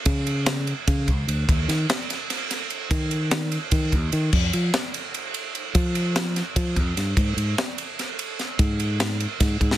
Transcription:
0.06 fingered electric bass C#3, kick, ride
0.27 ride
0.46 snare, ride
0.67 ride
0.87 fingered electric bass C#3, kick, ride
1.07 fingered electric bass C#2, kick, ride
1.27 fingered electric bass D2, ride
1.49 fingered electric bass D#2, kick, ride
1.68 fingered electric bass D#3, snare, ride
1.90 snare, ride
2.10 snare, ride
2.30 snare, ride
2.51 snare, ride
2.70 ride
2.91 fingered electric bass D#3, kick, ride
3.11 ride
3.31 snare, ride
3.52 ride
3.71 fingered electric bass D#3, kick, ride
3.92 fingered electric bass D#2, kick, ride
4.12 fingered electric bass D#3, ride
4.33 fingered electric bass F2, kick, crash
4.53 fingered electric bass F3, ride
4.74 snare, ride
4.94 ride
5.14 ride
5.34 ride
5.55 ride
5.75 fingered electric bass F3, kick, ride
5.95 ride
6.16 snare, ride
6.36 snare, ride
6.56 fingered electric bass F3, kick, ride
6.76 fingered electric bass F2, kick, ride
6.97 fingered electric bass G2, snare, ride
7.17 fingered electric bass G#2, kick, ride
7.37 fingered electric bass G#2, ride
7.58 snare, ride
7.78 ride
7.99 snare, ride
8.19 ride
8.39 snare, ride
8.59 fingered electric bass G#2, kick, ride
8.80 ride
9.00 snare, ride
9.20 ride
9.40 fingered electric bass G#2, kick, snare, ride
9.60 fingered electric bass G#2, kick, ride
9.71 snare

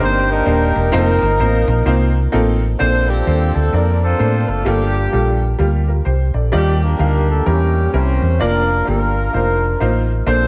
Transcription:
0.00 fingered electric bass G1, upright piano A#3 D4 D#4 G4 A#4, horn section C4 D#4 G4 C5
0.30 horn section A#3 D4 D#4 A#4
0.46 fingered electric bass D#1, upright piano A#3 D4 D#4 G4 C5
0.76 fingered electric bass E1
0.92 fingered electric bass F1, upright piano A#3 C4 D#4 F4 C5, horn section A#3 D#4 A#4
1.22 fingered electric bass G1
1.40 fingered electric bass A1, upright piano A#3 C4 D#4 F4 C5
1.68 fingered electric bass A#1
1.85 fingered electric bass C2, upright piano A#3 C4 D#4 F4 C5
2.32 fingered electric bass A1, upright piano A#3 C4 D#4 F4 A4
2.79 fingered electric bass A#1, upright piano A#2 A#3 D4 A4 C5, horn section C4 F4 A4 C5
3.08 horn section G3 C4 D4 G4
3.26 fingered electric bass D#2, upright piano A#3 D4 A4 C5
3.55 fingered electric bass D2, horn section A3 A4
3.73 fingered electric bass F2, upright piano A#3 D4 A4 D5, horn section A#3 D4 F4 A#4
4.03 horn section C4 F4 A4 C5
4.19 fingered electric bass A2, upright piano A#3 D4 A4 C5
4.48 fingered electric bass F#1, horn section A3 A4
4.65 fingered electric bass G1, upright piano G2 G3 A#3 F4 A4, horn section G3 A#3 D4 G4
5.12 fingered electric bass A#1, upright piano G3 A#3 F4 A4
5.58 fingered electric bass D2, upright piano G3 A#3 F4 G4
5.88 upright piano F4 A#4
6.05 fingered electric bass C2, upright piano G4 C5
6.34 fingered electric bass A#1, upright piano A4 D5
6.52 fingered electric bass D#2, upright piano D#3 G3 D#4 F4 D5, horn section G3 A#3 D4 G4
6.83 horn section A#3 D4 G4 A#4
6.99 fingered electric bass D2, upright piano G3 D#4 F4 F5
7.29 horn section A3 A4
7.46 fingered electric bass E2, upright piano E3 G3 C#4 E4 A#4, horn section G3 A#3 C#4 G4
7.93 fingered electric bass C2, upright piano G3 C#4 E4 A#4, horn section C4 G4 C5
8.22 fingered electric bass E2
8.40 fingered electric bass F1, upright piano A#3 D4 F4 D5, horn section A#3 D4 F4 A#4
8.85 fingered electric bass G1, upright piano A#3 D4 F4 G4, horn section A#3 D4 F4 A#4
9.33 fingered electric bass F1, upright piano A#3 D#4 F4 C5
9.80 fingered electric bass A1, upright piano A#3 D#4 F4 C5
10.27 fingered electric bass A#1, upright piano A#2 A#3 D4 A4 C5, horn section C4 F4 A4 C5

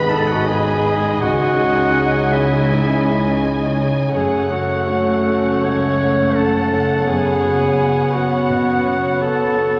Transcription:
Already playing: double bass section G#1, grand piano D#2 G#2 D#4 G#4 B4, cello section G#2, harp G#2 D#3 B3 G#4, viola section G#3, french horn section B3 D#4, clarinet B4, violin section D#5 B5, flute B5
0.09 grand piano D#4 G#4 B4, clarinet A4, flute A5
0.27 flute F#5
0.31 clarinet F#4
0.46 grand piano D#4 G#4 B4, clarinet G#4, flute G#5
0.74 harp B4
0.85 grand piano D#4 G#4 B4
1.21 double bass section C#2, grand piano C#2, cello section C#3, harp C#3, french horn section G#3, clarinet F#4, flute F#5, violin section G#5
1.59 grand piano D#4 G#4 C#5
1.71 harp G#4
1.97 grand piano D#4 G#4 C#5
2.20 harp C#5
2.32 grand piano E4 G#4 C#5, clarinet E4, flute E5
2.44 harp G#4
2.68 grand piano G#2, harp G#3
2.93 harp C#4
3.07 grand piano E4 G#4 C#5
3.18 harp G#4
3.44 grand piano E4 G#4 C#5
3.66 harp C#5
3.81 grand piano D#4 G#4 C#5
3.91 harp G#4
4.12 double bass section F#1, harp F#2, cello section F#2, grand piano F#2, viola section A3, french horn section A3 C#4, clarinet G#4, violin section C#5, flute G#5
4.17 violin section F#5
4.38 harp C#4
4.49 grand piano C#4 A4 C#5, clarinet F#4, flute F#5
4.62 harp A4
4.86 grand piano C#4 A4 C#5, harp C#5
5.11 harp A4
5.26 grand piano C#4 A4 C#5
5.37 harp C#4
5.62 grand piano C#2, harp C#3, clarinet C#5, flute C#6
5.87 harp C#4
6.01 grand piano C#4 A4 C#5
6.12 harp A4
6.35 grand piano C#4 A4, clarinet A4, harp C#5, flute A5
6.73 grand piano C#4 A4 C#5
6.84 harp C#4
7.06 harp F#2, viola section B3, french horn section B3, clarinet G#4, flute G#5
7.11 grand piano F#2
7.31 harp B3
7.45 grand piano B3 F#4 C#5
7.55 harp F#4
7.79 grand piano B3 F#4 C#5, harp B4
8.03 harp C#5
8.13 grand piano B3 F#4 C#5, clarinet F#4, flute F#5
8.27 harp F#4
8.50 grand piano B2, harp C#3
8.75 harp B3
8.87 grand piano B3 F#4 C#5
8.99 harp F#4
9.22 grand piano B3 F#4 C#5, clarinet A4, harp B4, flute A5
9.46 harp C#5
9.57 grand piano B3 F#4 C#5
9.69 harp F#4

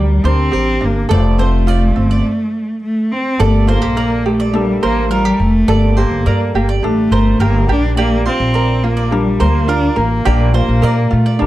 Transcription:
Already playing: upright bass D2, felt piano G3 D4 A#5, cello G3, ukulele D4 G4
0.24 upright bass D2, felt piano G3 D4 A#4, cello C4, ukulele D4, mandolin C5
0.52 upright bass A1, ukulele G4, mandolin A#4
0.81 upright bass G1, ukulele D4
0.85 cello A#3
1.09 upright bass F1, felt piano A3 F4 C5, ukulele A4, mandolin D5
1.14 cello A3
1.38 felt piano A3 F4 C5, ukulele C4, mandolin C5
1.67 ukulele F4, mandolin D5
1.96 upright bass G1, ukulele C4
2.11 mandolin D5
2.83 cello A3
3.12 cello C4
3.39 upright bass G1, felt piano G3 A#3 A4, cello A3, ukulele A4, mandolin D5
3.67 cello A#3, ukulele F4, mandolin C5
3.82 upright bass A#1, ukulele G4
3.97 ukulele A#4, mandolin D5
4.26 cello A3, ukulele G4
4.40 mandolin D5
4.53 felt piano G3 A3 A4, cello G3, ukulele D4
4.61 felt piano A#3
4.83 upright bass A1, cello A#3, ukulele A#4, mandolin C5
5.11 cello G3, ukulele F4, mandolin A#4
5.25 ukulele G4
5.40 upright bass F1, cello A3
5.68 upright bass G1, felt piano G3 A#3 A4, ukulele A4, mandolin D5
5.97 cello A#3, ukulele G4, mandolin C5
6.11 upright bass G1
6.26 upright bass G2, ukulele A#4, mandolin D5
6.55 upright bass G1, cello A#3, ukulele G4
6.69 mandolin D5
6.83 upright bass A1, felt piano G3 D4 A4, cello A3, ukulele D4
7.11 upright bass G1, ukulele A#4, mandolin C5
7.40 upright bass G1, cello A#3, ukulele G4, mandolin A#4
7.67 upright bass A#1, felt piano G3 D4 A#4, cello D4, ukulele G4
7.97 cello A#3, ukulele G4, mandolin D5
8.26 cello C4, ukulele F4, mandolin C5
8.40 upright bass A#1
8.54 ukulele A#4, mandolin D5
8.83 cello A#3, ukulele F4
8.97 mandolin D5
9.11 felt piano G3 D4 A#4, cello G3, ukulele D4
9.40 upright bass D2, cello A#3, ukulele A#4, mandolin C5
9.68 cello D4, ukulele F4, mandolin A#4
9.96 upright bass A1, cello A#3, ukulele A#4
10.24 upright bass A#1, felt piano G3 D4 A#4, ukulele G4, mandolin D5
10.54 cello A#3, ukulele F4, mandolin C5
10.69 upright bass A#1
10.82 upright bass A#2, ukulele A#4, mandolin D5
11.11 upright bass A#2, cello A3, ukulele F4
11.26 mandolin D5
11.39 upright bass A#1, felt piano G3 D4 A#4, cello G3, ukulele D4

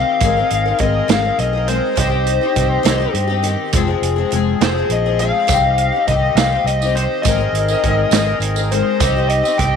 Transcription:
Already playing: twelve-string acoustic guitar D#3 C4 D#4 G4, accordion C4 G4 D#5, lead electric guitar F5
0.20 fingered electric bass G#1, twelve-string acoustic guitar G#3 C4 D#4, accordion G#4 A#4, kick, closed hi-hat
0.24 twelve-string acoustic guitar A#4
0.37 twelve-string acoustic guitar C4 D#4 A#4
0.50 fingered electric bass G#1, closed hi-hat
0.66 twelve-string acoustic guitar C4 D#4 A#4
0.78 fingered electric bass G#1, twelve-string acoustic guitar G#3 C4 D#4, lead electric guitar D#5, kick, closed hi-hat
0.83 twelve-string acoustic guitar A#4
1.08 fingered electric bass G#1, twelve-string acoustic guitar G#3 C4 D#4 A#4, lead electric guitar F5, snare, closed hi-hat
1.22 twelve-string acoustic guitar C4 D#4 A#4
1.39 fingered electric bass B1, lead electric guitar D#5, closed hi-hat
1.53 twelve-string acoustic guitar D#4 A#4
1.57 twelve-string acoustic guitar C4
1.68 twelve-string acoustic guitar G#3 C4 D#4 A#4, lead electric guitar C5, closed hi-hat
1.96 fingered electric bass C2, twelve-string acoustic guitar C3 D#3 C4 D#4 G4, accordion C4 G4 D#5, kick, closed hi-hat
2.00 lead electric guitar C5
2.10 twelve-string acoustic guitar C4 D#4 G4
2.26 closed hi-hat
2.41 twelve-string acoustic guitar C4 D#4 G4
2.56 fingered electric bass C2, twelve-string acoustic guitar D#3 C4 D#4, kick, closed hi-hat
2.60 twelve-string acoustic guitar G4
2.83 fingered electric bass C2, twelve-string acoustic guitar C3 D#3 C4 D#4 G4, snare, closed hi-hat
2.98 twelve-string acoustic guitar C4 D#4 G4
3.14 fingered electric bass G2, closed hi-hat
3.28 twelve-string acoustic guitar C4 D#4 G4
3.43 twelve-string acoustic guitar D#3 C4 D#4, closed hi-hat
3.47 twelve-string acoustic guitar G4
3.72 fingered electric bass F1, twelve-string acoustic guitar F2 C3 F3 G#3 C4, accordion F3 C4 G#4, kick, closed hi-hat
3.77 twelve-string acoustic guitar G#4
3.87 twelve-string acoustic guitar F3 G#3 C4 G#4
4.02 fingered electric bass F1, closed hi-hat
4.16 twelve-string acoustic guitar F3 G#3 C4 G#4
4.30 fingered electric bass F1, twelve-string acoustic guitar F3 G#3 C4 G#4, closed hi-hat
4.61 fingered electric bass F1, twelve-string acoustic guitar F2 C3 F3 G#3 C4 G#4, lead electric guitar C5, snare, closed hi-hat
4.76 twelve-string acoustic guitar F3 G#3 C4 G#4
4.89 fingered electric bass A#1, lead electric guitar D#5, closed hi-hat
5.06 twelve-string acoustic guitar F3 G#3 C4 G#4
5.19 twelve-string acoustic guitar F3 G#3 C4, lead electric guitar F5, closed hi-hat
5.24 twelve-string acoustic guitar G#4
5.47 fingered electric bass C2, twelve-string acoustic guitar C3 D#3 C4 D#4 G4, accordion G4 D#5, kick, closed hi-hat, tambourine
5.63 twelve-string acoustic guitar C4 D#4 G4
5.78 closed hi-hat
5.93 twelve-string acoustic guitar C4 D#4 G4
6.07 fingered electric bass C2, twelve-string acoustic guitar D#3 C4 D#4 G4, lead electric guitar D#5, kick, closed hi-hat
6.35 fingered electric bass C2, twelve-string acoustic guitar C3 D#3 C4, lead electric guitar F5, snare, closed hi-hat, tambourine
6.39 twelve-string acoustic guitar D#4 G4
6.53 twelve-string acoustic guitar C4 D#4 G4
6.64 fingered electric bass C2, lead electric guitar D#5, closed hi-hat, tambourine
6.82 twelve-string acoustic guitar C4 D#4 G4, tambourine
6.95 twelve-string acoustic guitar D#3 C4 D#4 G4, lead electric guitar C5, closed hi-hat
7.22 fingered electric bass G#1, twelve-string acoustic guitar G#3 C4 D#4, lead electric guitar D#5, kick, closed hi-hat, tambourine
7.27 accordion G#4 A#4, twelve-string acoustic guitar A#4
7.38 twelve-string acoustic guitar C4 D#4 A#4
7.52 fingered electric bass G#1, closed hi-hat
7.68 twelve-string acoustic guitar C4 D#4 A#4, tambourine
7.83 fingered electric bass G#1, twelve-string acoustic guitar G#3 C4 D#4, kick, closed hi-hat
7.89 twelve-string acoustic guitar A#4
8.11 fingered electric bass G#1, twelve-string acoustic guitar G#3 C4 D#4, snare, closed hi-hat, tambourine
8.16 twelve-string acoustic guitar A#4
8.26 twelve-string acoustic guitar C4 D#4 A#4
8.40 fingered electric bass G#1, closed hi-hat, tambourine
8.56 twelve-string acoustic guitar C4 D#4 A#4, tambourine
8.71 twelve-string acoustic guitar G#3 C4 D#4 A#4, lead electric guitar C5, closed hi-hat
9.00 fingered electric bass C2, twelve-string acoustic guitar C3 D#3 C4 D#4 G4, accordion C4 G4 D#5, kick, closed hi-hat, tambourine
9.16 twelve-string acoustic guitar C4 D#4 G4
9.29 lead electric guitar D#5, closed hi-hat
9.43 twelve-string acoustic guitar C4 D#4 G4, tambourine
9.58 fingered electric bass C2, twelve-string acoustic guitar D#3 C4 D#4, lead electric guitar G5, kick, closed hi-hat
9.62 twelve-string acoustic guitar G4

